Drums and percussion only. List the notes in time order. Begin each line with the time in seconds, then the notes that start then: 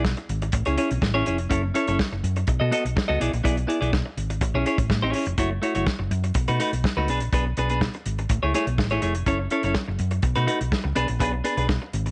0.05 kick, snare
0.17 closed hi-hat
0.29 closed hi-hat
0.42 closed hi-hat
0.52 kick, closed hi-hat
0.65 closed hi-hat
0.78 closed hi-hat
0.91 closed hi-hat
1.02 kick, snare
1.26 closed hi-hat
1.38 closed hi-hat
1.51 kick, closed hi-hat
1.75 closed hi-hat
1.87 closed hi-hat
1.99 kick, snare
2.24 closed hi-hat
2.36 closed hi-hat
2.47 kick, closed hi-hat
2.72 closed hi-hat
2.86 closed hi-hat
2.97 kick, snare
3.21 closed hi-hat
3.33 closed hi-hat
3.45 kick, closed hi-hat
3.57 closed hi-hat
3.70 closed hi-hat
3.82 closed hi-hat
3.93 kick, snare
4.18 closed hi-hat
4.30 closed hi-hat
4.41 kick, closed hi-hat
4.66 closed hi-hat
4.78 kick, closed hi-hat
4.90 kick, snare
5.13 open hi-hat
5.26 closed hi-hat
5.38 kick, closed hi-hat
5.63 closed hi-hat
5.75 closed hi-hat
5.87 kick, snare
6.11 closed hi-hat
6.24 closed hi-hat
6.34 kick, closed hi-hat
6.48 closed hi-hat
6.60 closed hi-hat
6.73 closed hi-hat
6.84 kick, snare
7.08 closed hi-hat
7.20 closed hi-hat
7.33 kick, closed hi-hat
7.57 closed hi-hat
7.69 closed hi-hat
7.81 kick, snare
7.94 closed hi-hat
8.06 closed hi-hat
8.18 closed hi-hat
8.29 kick, closed hi-hat
8.54 snare, closed hi-hat
8.67 closed hi-hat
8.78 kick, snare
8.90 closed hi-hat
9.02 closed hi-hat
9.15 closed hi-hat
9.26 kick, closed hi-hat
9.50 closed hi-hat
9.63 closed hi-hat
9.74 kick, snare
9.99 closed hi-hat
10.11 closed hi-hat
10.22 kick, closed hi-hat
10.35 closed hi-hat
10.48 closed hi-hat
10.61 closed hi-hat
10.72 kick, snare
10.96 closed hi-hat
11.08 closed hi-hat
11.20 kick, closed hi-hat
11.45 closed hi-hat
11.57 closed hi-hat
11.69 kick, snare
11.93 closed hi-hat
12.06 closed hi-hat